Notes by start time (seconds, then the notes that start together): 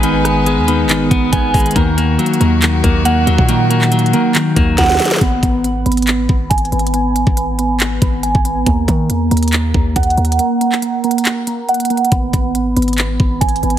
Already playing: G#1 G#3 B3 D#4 B4 G#5
0.03 D#3 B3, closed hi-hat
0.24 B3, cross-stick, closed hi-hat
0.46 G#3 B3, closed hi-hat
0.58 D#2
0.68 D#3 B3, closed hi-hat
0.84 G#1
0.89 D#3 B3, clap, closed hi-hat
1.11 G#1 B3, kick, closed hi-hat
1.32 G#1 B3 G#5, kick, closed hi-hat
1.54 G#1 G#3 B3, kick, closed hi-hat, open hi-hat
1.60 closed hi-hat
1.66 closed hi-hat
1.71 closed hi-hat
1.76 D#2 D#3 A#3 F#4, kick, closed hi-hat
1.98 A#3, closed hi-hat
2.19 F#3 A#3, closed hi-hat
2.26 closed hi-hat
2.33 closed hi-hat
2.41 D#2 D#3 A#3, closed hi-hat
2.62 D#3 A#3, clap, closed hi-hat
2.84 D#2 A#3, kick, closed hi-hat
3.05 A#3 F#5, closed hi-hat
3.27 D#2 F#3 A#3, closed hi-hat
3.38 A#2, kick
3.49 D#3 A#3, closed hi-hat
3.70 A#3, closed hi-hat
3.81 clap
3.92 F#3 A#3, closed hi-hat
3.99 closed hi-hat
4.06 closed hi-hat
4.13 D#3 A#3, closed hi-hat
4.35 D#3 A#3, clap, closed hi-hat
4.56 D#2 A#3, kick, closed hi-hat
4.78 D#2 A#3 F#5, kick, snare, closed hi-hat
4.84 snare
4.89 snare
4.95 snare
4.99 F#3 A#3, snare, closed hi-hat, open hi-hat
5.05 snare, closed hi-hat
5.11 snare, closed hi-hat
5.16 snare, closed hi-hat
5.21 G#1 B3, kick, closed hi-hat
5.43 G#1 B3, kick, closed hi-hat
5.64 B3, closed hi-hat
5.86 G#1 B3, closed hi-hat
5.92 closed hi-hat
5.97 closed hi-hat
6.02 closed hi-hat
6.07 B3, clap, closed hi-hat
6.29 G#1 B3, kick
6.50 G#1 G#5, kick, closed hi-hat
6.58 closed hi-hat
6.65 closed hi-hat
6.72 G#1 B3, closed hi-hat
6.79 closed hi-hat
6.87 closed hi-hat
6.94 B3, closed hi-hat
7.15 B3, closed hi-hat
7.27 G#1, kick
7.37 B3, closed hi-hat
7.59 B3, closed hi-hat
7.80 B3, clap, closed hi-hat
8.01 G#1 B3, kick, closed hi-hat
8.23 G#5, closed hi-hat
8.35 G#1, kick
8.45 B3, closed hi-hat
8.66 D#2 A#3, kick, closed hi-hat
8.88 D#3 A#3, kick, closed hi-hat
9.10 E2 A#3, closed hi-hat
9.31 D#2 A#3, closed hi-hat
9.37 closed hi-hat
9.43 closed hi-hat
9.48 closed hi-hat
9.53 clap, closed hi-hat
9.74 D#2 A#3, kick
9.96 D#2 F#5, kick, closed hi-hat
10.03 closed hi-hat
10.10 closed hi-hat
10.17 D#2 A#3, closed hi-hat
10.25 closed hi-hat
10.32 closed hi-hat
10.39 A#3, closed hi-hat
10.61 A#3, closed hi-hat
10.72 clap
10.82 A#3, closed hi-hat
11.04 A#3, closed hi-hat
11.11 closed hi-hat
11.18 closed hi-hat
11.25 A#3, clap, closed hi-hat
11.47 A#3, closed hi-hat
11.69 F#5, closed hi-hat
11.74 closed hi-hat
11.80 closed hi-hat
11.85 closed hi-hat
11.90 A#3, closed hi-hat
11.97 closed hi-hat
12.05 closed hi-hat
12.12 G#1 B3, kick, closed hi-hat
12.33 G#1 B3, kick, closed hi-hat
12.55 B3, closed hi-hat
12.76 G#1 B3, closed hi-hat
12.82 closed hi-hat
12.88 closed hi-hat
12.93 closed hi-hat
12.98 B3, clap, closed hi-hat
13.20 G#1 B3, kick
13.41 G#1 G#5, kick, closed hi-hat
13.49 closed hi-hat
13.56 closed hi-hat
13.63 G#1 B3, closed hi-hat
13.70 closed hi-hat